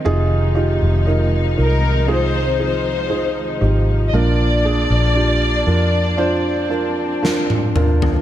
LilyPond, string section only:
\new Staff \with { instrumentName = "String section" } { \time 4/4 \key bes \mixolydian \tempo 4 = 59 << { <c ees ees'>1 | d'1 | } \\ { <f aes>1 | bes2 c'2 | } >> }